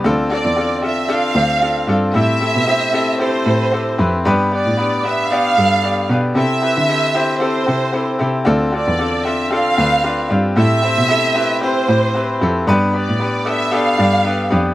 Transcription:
X:1
M:4/4
L:1/16
Q:"Swing 16ths" 1/4=114
K:Ddor
V:1 name="Violin section"
z2 d4 e2 f6 z2 | e8 c6 z2 | z2 d4 e2 f6 z2 | e8 c6 z2 |
z2 d4 e2 f6 z2 | e8 c6 z2 | z2 d4 e2 f6 z2 |]
V:2 name="Upright piano"
[CDFA]2 [CDFA]2 [CDFA]2 [CDFA]2 [CDFA]2 [CDFc]2 [CDFA]2 [CDFA]2 | [CEGA]2 [CEGA]2 [CEGc]2 [CEGA]2 [CEGA]2 [CEGA]2 [CEGA]2 [CEGB]2 | [B,DGB]2 [B,DGB]2 [B,DGB]2 [B,DGB]2 [B,DGd]2 [B,DGA]2 [B,DGd]2 [B,DGB]2 | [CEGA]2 [CEGB]2 [CEGA]2 [CEGc]2 [CEGA]2 [CEGA]2 [CEGA]2 [CEGA]2 |
[CDFA]2 [CDFA]2 [CDFA]2 [CDFA]2 [CDFA]2 [CDFB]2 [CDFB]2 [CDFG]2 | [CEGA]2 [CEGc]2 [CEGA]2 [CEGB]2 [CEGc]2 [CEGc]2 [CEGB]2 [CEGA]2 | [B,DGB]2 [B,DGB]2 [B,DGB]2 [B,DGA]2 [B,DGA]2 [B,DGd]2 [B,DGB]2 [B,DGB]2 |]
V:3 name="Upright piano" clef=bass
D,6 z8 z2 | A,,6 z8 z2 | G,,6 z8 z2 | C,6 z8 z2 |
D,6 z8 z2 | A,,6 z8 z2 | G,,6 z8 z2 |]
V:4 name="Cello" clef=bass
D,,3 E,,6- E,, D,,4 G,,2 | A,,3 B,,6- B,, A,,4 F,,2 | G,,3 A,,6- A,, G,,4 B,,2 | C,3 D,6- D, C,4 C,2 |
D,,3 E,,6- E,, D,,4 G,,2 | A,,3 B,,6- B,, A,,4 F,,2 | G,,3 A,,6- A,, G,,4 F,,2 |]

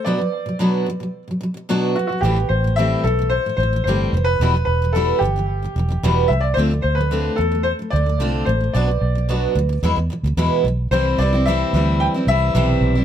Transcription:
X:1
M:4/4
L:1/16
Q:1/4=110
K:C
V:1 name="Upright piano"
d4 z8 z2 ^F F | G2 c2 e2 A2 c2 c2 c3 B- | B2 B2 A2 G8 e d | c2 c B3 A2 c2 d4 c2 |
d4 z12 | c2 d2 e4 g2 e6 |]
V:2 name="Steel-string acoustic guitar" clef=bass
[B,,^F,B,D^F] [B,,F,]2 [B,,F,] [B,,F,B,DF]2 [B,,F,] [B,,F,]2 [B,,F,] [B,,F,] [B,,F,] [B,,F,B,DF]2 [B,,F,] [B,,F,] | [A,,E,G,CG] [A,,E,]2 [A,,E,] [A,,E,G,CG]2 A,, [A,,E,]2 [A,,E,] [A,,E,] [A,,E,] [A,,E,G,CG]2 [A,,E,]2 | [E,,B,,E,G,B,E] [E,,B,,E,]2 [E,,B,,E,] [E,,B,,E,G,B,E]2 [E,,B,,E,] [E,,B,,E,]2 [E,,B,,E,] [E,,B,,E,] [E,,B,,E,] [E,,B,,E,G,B,E]2 [E,,B,,]2 | [D,A,CF] [D,A,]2 [D,A,] [D,A,CF]2 [D,A,] [D,A,]2 [D,A,] [D,A,] [D,A,] [D,A,CF]2 [D,A,] [D,A,] |
[B,,^F,B,D^F] [B,,F,]2 [B,,F,] [B,,F,B,DF]2 [B,,F,] [B,,F,] [E,,B,,E,^G,B,E] [E,,B,,E,] [E,,B,,E,] [E,,B,,E,] [E,,B,,E,G,B,E]2 [E,,B,,]2 | [C,E,G,CE]2 [E,G,CE] [G,CE] [C,E,G,CE]2 [E,G,CE]3 [G,CE] [E,G,CE]2 [C,E,G,CE]3 [G,CE] |]
V:3 name="Fingered electric bass" clef=bass
z16 | A,,,2 A,,,4 B,,,3 z A,,,2 G,,,2 F,,,2 | E,,,2 E,,,4 G,,,4 E,,,2 E,,,2 C,,2 | D,,2 D,,4 E,,3 z D,,2 C,,2 A,,,2 |
B,,,2 B,,,4 D,,2 E,, E,, z D,, E,, z B,,,2 | C,,2 C,,4 D,,3 z C,,2 B,,,2 B,,,2 |]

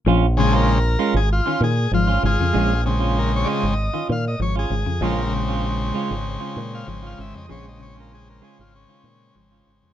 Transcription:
X:1
M:4/4
L:1/16
Q:1/4=97
K:Bbm
V:1 name="Transistor combo organ"
z2 A [=AB]4 _A F2 A2 F2 [FA]2- | [FA]2 z2 B d [=de]4 f e _d A3 | B2 z8 z f z f =e _e | d e d B A B A F D4 z4 |]
V:2 name="Transistor combo organ" clef=bass
z2 [D,A,C]2 z12 | z2 [D,A,C]6 z8 | [D,A,C]16 | [D,A,C]16 |]
V:3 name="Clean electric guitar"
[DF] z2 [DF] z2 [A,DF] z2 [DF] z3 [DF] z2 | [A,D] z2 [DF] z2 [A,DF] z2 [DF] z3 [DF] z2 | [A,DF] z2 [DF] z2 [A,DF] z2 [DF] z3 F z2 | [A,D] z2 [DF] z2 [A,DF] z2 [DF] z3 [DF] z2 |]
V:4 name="Clean electric guitar" clef=bass
F,2 D,2 z4 z E, E,2 F,2 D, D, | F,2 D,2 z4 z E, E,2 F,2 D, D, | F,2 D,2 z6 E,2 F,2 D, D, | F,2 D,2 z4 z E, E,2 F,2 D, D, |]
V:5 name="Fingered electric bass" clef=bass
B,,,6- B,,, A,,,2 z B,,2 A,,,2 A,,, F,, | B,,,6- B,,, A,,,2 z B,,2 A,,,2 A,,, F,, | B,,,6- B,,, A,,,2 z B,,2 A,,,2 A,,, F,, | B,,,6- B,,, A,,,2 z B,,2 A,,,2 A,,, F,, |]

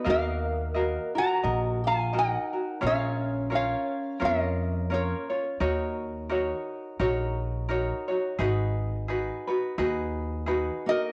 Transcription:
X:1
M:4/4
L:1/16
Q:"Swing" 1/4=86
K:Ebm
V:1 name="Resonator guitar played with a steel bar"
[Bf]6 [gb]4 [fa]2 [eg]4 | [df]4 [df]4 [Be]4 [Bd]3 z | z16 | z12 z2 [Be]2 |]
V:2 name="Ukulele"
[GBef]4 [GBef]2 [GB]2 [Be]4 [GBe]2 [GB]2 | [DFBd]4 [DFBd]4 [DFBd]4 [DFBd]2 [DFd]2 | [EGBd]4 [EGBd]4 [EGBd]4 [EGBd]2 [EGd]2 | [EGAc]4 [EGAc]2 [EGc]2 [EGAc]4 [EGAc]2 [EG]2 |]
V:3 name="Steel-string acoustic guitar"
B,6 G4 F2 E4 | D4 D4 B,4 B,3 z | z16 | z12 z2 B,2 |]
V:4 name="Upright bass" clef=bass
E,,8 B,,,8 | B,,,8 F,,8 | E,,8 B,,,8 | A,,,8 E,,8 |]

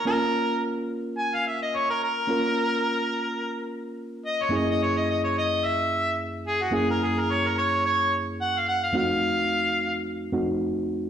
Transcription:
X:1
M:4/4
L:1/16
Q:"Swing 16ths" 1/4=108
K:Bbm
V:1 name="Harmonica"
B4 z4 a f =e _e d B B2- | B8- B2 z4 e d | e e d e e d e2 _f4 z2 A G | A B A B d B d2 d2 z2 g f g f |
f8 z8 |]
V:2 name="Reed electric piano"
[B,DFB]16 | [B,DFB]16 | [G,,B,D_FA]16 | [G,,B,D_FA]16 |
[F,,=A,CEG]8- [F,,A,CEG]2 [F,,A,CEG]6 |]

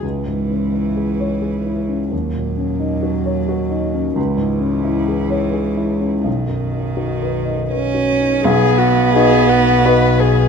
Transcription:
X:1
M:3/4
L:1/8
Q:1/4=86
K:C#m
V:1 name="Violin"
z6 | z6 | z6 | z6 |
G F G F B G |]
V:2 name="Grand piano"
(3C,, G,, C (3E G c (3G E C | (3D,, ^A,, C (3D F c (3F D C | (3C,, G,, C (3E G c (3G E C | (3B,,, F,, D (3F B d (3B F D |
B,,,2 [DFB]2 [DFB]2 |]
V:3 name="Cello" clef=bass
E,6 | F,6 | E,6 | D,4 C2 |
B,6 |]
V:4 name="Double bass" clef=bass
C,,6 | D,,6 | C,,6 | B,,,6 |
B,,,6 |]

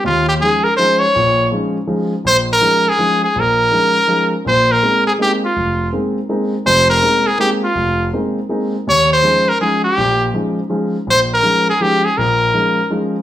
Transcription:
X:1
M:3/4
L:1/8
Q:"Swing" 1/4=163
K:Ebmix
V:1 name="Trumpet"
F G A B c d- | d2 z4 | c B2 A2 A | B4- B z |
c B2 A G F- | F2 z4 | c B2 A G F- | F2 z4 |
d c2 B A G- | G2 z4 | c B2 A G A | B4 z2 |]
V:2 name="Grand piano" clef=bass
E,,2 [F,A,DE] z [F,A,DE] z | [B,,,B,,]2 [F,A,DE] z [F,A,DE] z | B,,,2 [F,A,DE] z [F,A,DE] z | B,,,2 [F,A,DE] z [F,A,DE] z |
[B,,,B,,]2 [A,B,CE] z [A,B,CE] z | F,,,2 [A,B,CE] z [A,B,CE] z | [F,,,F,,]2 [A,B,CE] z [A,B,CE] z | F,,,2 [A,B,CE] z [A,B,CE] z |
E,,2 [F,A,DE] z [F,A,DE] z | [B,,,B,,]2 [F,A,DE] z [F,A,DE] z | B,,,2 [F,A,DE] z [F,A,DE] z | [B,,,B,,]2 [F,A,DE] z [F,A,DE] z |]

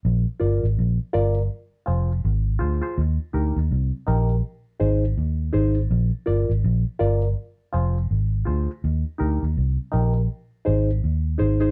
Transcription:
X:1
M:4/4
L:1/16
Q:"Swing 16ths" 1/4=82
K:Bbmix
V:1 name="Reed electric piano"
z2 [FBd] z3 [FBd] [Bd] z2 [FAc] z3 [FAc] [FAc] | z2 [EGB] z3 [EGB] [GB] z2 [EAc] z3 [EAc] [Ac] | z2 [FBd] z3 [FBd] [Bd] z2 [FAc] z3 [FAc] z | z2 [EGB] z3 [EGB] [GB] z2 [EAc] z3 [EAc] [EAc] |]
V:2 name="Fingered electric bass" clef=bass
B,,, z G,,, A,,, B,,, z G,,,2 z2 F,,,2 A,,,2 D,, z | E,, z D,, E,, C,, z B,,,2 z2 A,,,2 E,,2 A,,,2 | B,,, z G,,, A,,, B,,, z G,,,2 z2 F,,,2 A,,,2 D,, z | E,, z D,, E,, C,, z B,,,2 z2 A,,,2 E,,2 A,,,2 |]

